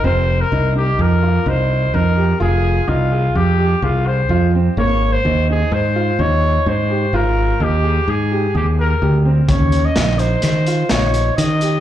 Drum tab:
HH |----------|----------|----------|----------|
SD |----------|----------|----------|----------|
BD |----------|----------|----------|----------|

HH |xxxxxxxxxx|
SD |--o-o-o---|
BD |o---------|